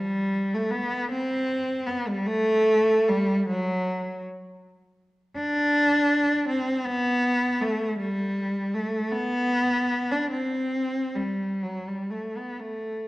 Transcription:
Already playing: G3
0.53 A3
0.71 B3
1.11 C4
1.86 B3
2.08 G3
2.26 A3
3.08 G3
3.48 F#3
5.35 D4
6.48 C4
6.85 B3
7.61 A3
7.98 G3
8.74 A3
9.12 B3
10.11 D4
10.30 C4
11.15 G3
11.63 F#3
11.87 G3
12.10 A3
12.36 B3
12.59 A3

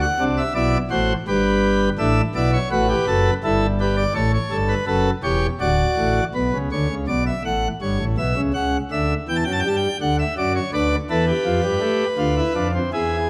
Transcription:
0.02 F#5
0.19 C2 C3 D4
0.38 E5
0.55 B1 B2 E4 D5
0.90 A1 A2 F#4 C5
1.27 G1 G2 G4 B4
1.99 A1 A2 D4 E5
2.35 B1 B2 E4 D5
2.53 C#5
2.71 A1 A2 F#4 B4
2.89 G4
3.07 F#1 F#2 A4
3.44 G1 G2 E4 A4
3.80 G4 B4
3.97 D5
4.14 A1 A2 A4 C#5
4.34 C#5
4.51 G1 G2 A4
4.68 B4
4.87 F#1 F#2 A4 B4
5.23 E1 E2 G4 C#5
5.60 D1 D2 F#4 D5
5.97 A1 A2
6.34 B1 B2 B4
6.53 C#2 C#3
6.72 D2 D3 C#5
6.89 C#2 C#3
7.08 B1 B2 D5
7.27 E5
7.45 A1 A2 F#5
7.82 G1 G2 C#5
8.00 A1 A2
8.18 B1 B2 E5
8.36 C#2 C#3
8.54 C#2 C#3 F#5
8.91 D2 D3 E5
9.28 E2 E3 G5
9.36 A5
9.45 F#2 F#3 G5
9.53 A5
9.60 G5
9.65 G2 G3 A5
9.76 G5
10.01 D2 D3 F#5
10.19 E5
10.37 F#2 F#3 D5
10.55 C#5
10.73 D2 D3 B4 D5
11.10 E2 E3 A4 B4
11.28 G4
11.45 F2 F3
11.63 G2 G3
11.81 A3
12.18 D2 D3 F4
12.37 E4
12.55 F2 F3 D4
12.74 C4
12.93 E2 E3 E4 G#4

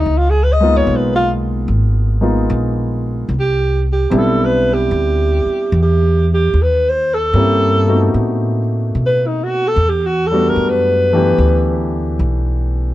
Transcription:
0.00 D#4
0.06 C#2
0.18 F4
0.30 G#4
0.43 B4
0.53 D#5
0.60 G#3 A#3 B3 D#4 F4
0.77 C#5
0.87 B1
0.96 B4
1.15 F4
1.68 G#1
2.21 G#3 A#3 B3 D#4 F4
2.50 A#1
3.29 C2
3.40 G4
3.92 G4
4.10 B1 G3 B3 C4 D4 E4
4.17 A4
4.45 B4
4.73 G4
4.91 D2
5.45 muted upright bass stroke
5.72 E2
5.82 G4
6.34 G4
6.54 D#2
6.62 B4
6.89 C5
7.14 A4
7.33 G2 A#3 C4 C#4 E4 G4
7.87 A3 B3 C4 D#4 F#4
8.14 A2
8.95 B2
9.06 B4
9.27 D#4
9.43 F#4
9.68 A4
9.76 E2
9.89 G4
10.06 F#4
10.27 A4
10.31 G3 A3 B3 D4 F#4
10.49 A#4
10.56 F#2
10.69 B4
11.13 E3 A3 B3 D4 G4
11.38 D2
12.19 B1

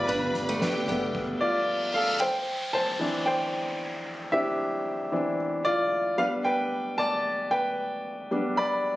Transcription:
Already playing: D3 G3 A3 B3 E4 F4 G4 B4 C5 D5 E5 B5
0.06 G1 D4 B4, kick, closed hi-hat
0.35 G1, closed hi-hat
0.49 A3
0.60 D4 G4 B4 G5, snare, closed hi-hat
0.75 closed hi-hat
0.88 G1 G3 A3 B3, kick, closed hi-hat
1.14 kick, crash, reverse cymbal
1.41 F4 D5
1.94 A4 F5
2.20 C5 G5, downlifter
2.73 C5 A5
2.99 E3 C4 D4
3.26 C5 G5
4.32 C4 D4 E4 G4 E5
5.12 E3 C4 D4
5.65 F4 D5
6.18 G3 B3 D4 B4 F5
6.45 B4 G5
6.98 D5 A5
7.51 B4 G5
8.31 G3 B3 D4
8.57 D5 B5

